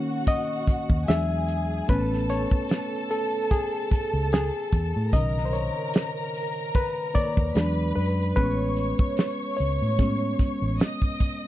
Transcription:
Already playing: reed electric piano D#3 A#3 C#4 C#5, string section F#4 F#5
0.27 reed electric piano D#5, kick, closed hi-hat, tambourine
0.67 muted fingered electric bass stroke, kick, closed hi-hat, tambourine
0.90 fingered electric bass D#2, kick
1.08 fingered electric bass E2, reed electric piano F#3 G#3 D4 E5, string section G#4 G#5, snare, closed hi-hat, tambourine
1.48 closed hi-hat, tambourine
1.88 fingered electric bass A1, reed electric piano A3 B3 C#4 B4, string section A4 A5, kick, closed hi-hat, tambourine
2.13 snare
2.29 reed electric piano C#5, closed hi-hat, tambourine
2.51 kick
2.69 snare, closed hi-hat, tambourine
3.10 reed electric piano A4, closed hi-hat, tambourine
3.51 reed electric piano G#4, kick, closed hi-hat, tambourine
3.91 muted fingered electric bass stroke, kick, closed hi-hat, tambourine
4.13 fingered electric bass C#2
4.32 reed electric piano G#4, snare, closed hi-hat, tambourine
4.73 fingered electric bass E2, kick, closed hi-hat, tambourine
4.96 fingered electric bass A2
5.13 fingered electric bass B1, reed electric piano A#2 C#3 D#3 D#5, string section A#4 A#5, kick, closed hi-hat
5.37 snare
5.45 reed electric piano C5
5.53 reed electric piano C#5, closed hi-hat, tambourine
5.93 snare, closed hi-hat, tambourine
6.34 open hi-hat, tambourine
6.74 reed electric piano B4, kick, closed hi-hat, tambourine
7.14 reed electric piano D#3 A#3 C#5 D5, muted fingered electric bass stroke, kick, closed hi-hat, tambourine
7.37 fingered electric bass D#2, kick
7.55 fingered electric bass E2, reed electric piano F#3 G#3 D4, string section B4 B5, snare, closed hi-hat, tambourine
7.96 fingered electric bass F#2, reed electric piano B4, open hi-hat
8.36 fingered electric bass A1, reed electric piano G#3 B3 C#4 B4, string section C#5 C#6, kick, closed hi-hat, tambourine
8.76 closed hi-hat, tambourine
8.99 kick
9.17 snare, closed hi-hat, tambourine
9.57 fingered electric bass C#2, reed electric piano C#5, closed hi-hat, tambourine
9.82 fingered electric bass A2
9.98 reed electric piano G#3 B3 C#4, kick, closed hi-hat, tambourine
10.39 muted fingered electric bass stroke, kick, closed hi-hat, tambourine
10.62 fingered electric bass A1
10.79 string section D#5 D#6, snare, closed hi-hat, tambourine
11.02 kick
11.20 kick, closed hi-hat, tambourine

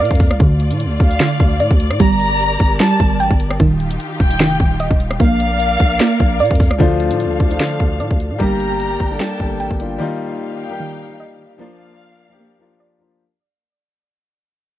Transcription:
Already playing: string section A#3 A#4 D5 F5, synth pluck A#3
0.00 808-style bass A#2, synth pluck D5
0.05 closed hi-hat
0.11 808-style bass F2, kick, closed hi-hat
0.15 closed hi-hat
0.20 kick, open hi-hat
0.31 808-style bass C2, cross-stick
0.40 808-style bass D2, synth pluck D3, string section D3 A3 F4 D5, kick, closed hi-hat
0.60 closed hi-hat
0.71 808-style bass A2, closed hi-hat
0.80 closed hi-hat
0.85 808-style bass D2
1.00 808-style bass D2, violin section F5, kick, closed hi-hat
1.11 closed hi-hat
1.20 synth pluck D3, snare, clap, closed hi-hat
1.40 808-style bass D2, kick
1.60 808-style bass A2, synth pluck D5, closed hi-hat
1.71 808-style bass D2, kick
1.80 closed hi-hat
1.91 808-style bass A2, cross-stick
2.00 808-style bass G1, string section G3 G4 A#4, synth pluck G3, violin section A#5, kick, closed hi-hat
2.20 closed hi-hat
2.40 closed hi-hat
2.60 808-style bass G1, kick, closed hi-hat
2.80 synth pluck G3, violin section A5, snare, clap, closed hi-hat
3.00 808-style bass G1, kick
3.20 808-style bass A1, synth pluck G5, closed hi-hat
3.31 808-style bass G1, kick
3.40 closed hi-hat
3.51 cross-stick
3.60 808-style bass D#1, string section D#3 D#4 F4 G4, synth pluck D#3, kick, closed hi-hat
3.80 closed hi-hat
3.91 closed hi-hat
4.00 closed hi-hat
4.20 808-style bass D#1, violin section G5, kick, closed hi-hat
4.31 closed hi-hat
4.40 808-style bass F1, synth pluck D#3, snare, clap, closed hi-hat
4.60 808-style bass D#1, kick
4.80 synth pluck D#5, closed hi-hat
4.91 808-style bass D#1, kick
5.00 closed hi-hat
5.11 cross-stick
5.20 808-style bass A#1, string section A#3 A#4 D5 F5, synth pluck A#3, violin section F5, kick, closed hi-hat
5.40 closed hi-hat
5.60 closed hi-hat
5.80 808-style bass A#1, kick, closed hi-hat
5.91 closed hi-hat
6.00 synth pluck A#3, snare, clap, closed hi-hat
6.20 808-style bass A#1, kick
6.40 808-style bass A#2, synth pluck D5, closed hi-hat
6.45 closed hi-hat
6.51 808-style bass F2, kick, closed hi-hat
6.55 closed hi-hat
6.60 kick, open hi-hat
6.71 808-style bass C2, cross-stick
6.78 808-style bass D2, synth pluck D3, string section D3 D4 A4 F5, grand piano F3 A3 D4 F4, kick, closed hi-hat
7.00 closed hi-hat
7.11 808-style bass A2, closed hi-hat
7.20 closed hi-hat
7.25 808-style bass D2
7.40 808-style bass D2, violin section F5, kick, closed hi-hat
7.49 grand piano F3 A3 D4 F4, closed hi-hat
7.60 synth pluck D3, snare, clap, closed hi-hat
7.80 808-style bass D2, kick
8.00 808-style bass A2, synth pluck D5, closed hi-hat
8.11 808-style bass D2, kick
8.20 closed hi-hat
8.31 808-style bass A2
8.39 808-style bass G1, grand piano G3 A#3 D4 G4, synth pluck G3, string section G3 D4 A#4 G5, violin section A#5, kick, closed hi-hat
8.60 closed hi-hat
8.80 closed hi-hat
9.00 808-style bass G1, kick, closed hi-hat
9.09 grand piano G3 A#3 D4 A4
9.20 synth pluck G3, violin section A5, snare, clap, closed hi-hat
9.38 808-style bass G1, grand piano G3 A#3 D4 A4, kick
9.60 808-style bass A1, synth pluck G5, closed hi-hat
9.71 808-style bass G1, kick
9.78 grand piano G3 A#3 D4 F4, closed hi-hat
9.98 string section D#3 D#4 G4 F5, synth pluck D#3, grand piano G3 A#3 D#4 F4
10.60 violin section G5
10.69 grand piano G3 A#3 D#4 G4
10.80 synth pluck D#3
11.20 synth pluck D#5
11.58 grand piano F3 A#3 D4 F4, synth pluck A#3, string section A#3 A#4 D5 F5, violin section F5
12.29 grand piano F3 A#3 D4 G4
12.40 synth pluck A#3
12.58 grand piano F3 A#3 D4 F4
12.80 synth pluck D5
12.99 grand piano F3 A#3 D4 F4

